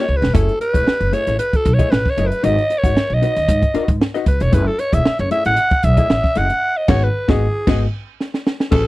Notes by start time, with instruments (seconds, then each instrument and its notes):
0.00 alto saxophone C#5
0.08 upright bass C#2
0.17 alto saxophone B4
0.21 upright bass E1, muted hollow-body jazz guitar stroke, snare
0.34 upright bass F#1, hollow-body jazz guitar A3 E4 G#4 C#5, alto saxophone A4, kick, closed hi-hat
0.49 closed hi-hat
0.60 alto saxophone B4, muted hollow-body jazz guitar stroke, closed hi-hat
0.74 upright bass E1, hollow-body jazz guitar A3 E4 G#4 C#5, kick, closed hi-hat
0.86 muted hollow-body jazz guitar stroke, muted upright bass stroke, snare
1.00 upright bass F#1, muted hollow-body jazz guitar stroke, closed hi-hat
1.12 hollow-body jazz guitar A3 E4 G#4 C#5, alto saxophone C#5, closed hi-hat
1.26 upright bass A1, hollow-body jazz guitar A3 E4 G#4 C#5, snare, closed hi-hat
1.39 alto saxophone B4, muted hollow-body jazz guitar stroke, closed hi-hat
1.53 alto saxophone A4, muted hollow-body jazz guitar stroke, muted upright bass stroke, kick, closed hi-hat
1.65 upright bass B1, kick, closed hi-hat
1.73 alto saxophone C#5
1.79 hollow-body jazz guitar A3 E4 G#4 D#5, kick, closed hi-hat
1.91 upright bass A1, alto saxophone B4, snare
2.06 kick, snare
2.10 alto saxophone C#5
2.17 upright bass F#1, hollow-body jazz guitar A3 E4 G#4 D#5, closed hi-hat
2.23 alto saxophone A#4 B4
2.31 muted hollow-body jazz guitar stroke, closed hi-hat
2.43 upright bass G#1, hollow-body jazz guitar D#4 F#4 B4 D#5, alto saxophone D#5, closed hi-hat
2.58 closed hi-hat
2.70 muted hollow-body jazz guitar stroke, closed hi-hat
2.78 alto saxophone C#5
2.84 upright bass G#1, hollow-body jazz guitar D#4 F#4 B4 F#5, kick, closed hi-hat
2.96 muted upright bass stroke, muted hollow-body jazz guitar stroke, snare
3.10 upright bass B1, alto saxophone D#5, muted hollow-body jazz guitar stroke
3.22 hollow-body jazz guitar D#4 F#4 B4 D#5, closed hi-hat
3.36 upright bass D#2, muted hollow-body jazz guitar stroke, snare, closed hi-hat
3.48 upright bass G#2, muted hollow-body jazz guitar stroke, kick, closed hi-hat
3.62 muted hollow-body jazz guitar stroke, kick, closed hi-hat
3.74 hollow-body jazz guitar D#4 F#4 B4 D#5, muted upright bass stroke, closed hi-hat
3.88 upright bass G#2, muted hollow-body jazz guitar stroke, kick, closed hi-hat
4.01 muted hollow-body jazz guitar stroke, snare
4.14 hollow-body jazz guitar D#4 F#4 B4 D#5, snare, closed hi-hat
4.26 upright bass C#2, alto saxophone B4, muted hollow-body jazz guitar stroke, kick, closed hi-hat
4.40 upright bass E1, alto saxophone C#5, muted hollow-body jazz guitar stroke, closed hi-hat
4.52 upright bass F#1, hollow-body jazz guitar A3 E4 G#4 C#5, alto saxophone B4, kick, closed hi-hat
4.67 alto saxophone A4
4.79 alto saxophone C#5, muted hollow-body jazz guitar stroke, closed hi-hat
4.92 upright bass E1, hollow-body jazz guitar A3 E4 G#4 C#5, alto saxophone E5, kick, closed hi-hat
5.05 snare
5.19 upright bass F#1, alto saxophone C#5, muted hollow-body jazz guitar stroke, closed hi-hat
5.31 hollow-body jazz guitar A3 E4 G#4 C#5, alto saxophone E5, closed hi-hat
5.44 upright bass A1, hollow-body jazz guitar A3 E4 G#4 C#5, alto saxophone F#5, snare, closed hi-hat
5.57 muted hollow-body jazz guitar stroke, closed hi-hat
5.71 muted hollow-body jazz guitar stroke, muted upright bass stroke, kick, closed hi-hat
5.83 upright bass B1, alto saxophone E5, kick, closed hi-hat
5.97 hollow-body jazz guitar A3 E4 G#4 D#5, kick, closed hi-hat
6.10 upright bass A1, snare
6.24 kick, snare
6.35 upright bass F#1, hollow-body jazz guitar A3 E4 G#4 D#5, alto saxophone F#5, closed hi-hat
6.50 muted hollow-body jazz guitar stroke, closed hi-hat
6.77 alto saxophone D#5
6.88 upright bass G#1, hollow-body jazz guitar B3 F#4 G#4 F#5, alto saxophone C#5, kick, snare, crash
7.03 alto saxophone B4
7.28 upright bass G#1, hollow-body jazz guitar B3 F#4 G#4 D#5, alto saxophone G#4, kick, snare
7.67 upright bass G#1, hollow-body jazz guitar B3 F#4 G#4 D#5, kick, snare, crash
8.20 snare
8.34 snare
8.47 snare
8.60 snare
8.71 upright bass A1, hollow-body jazz guitar C#4 G#4 B4 E5, alto saxophone A4, kick, crash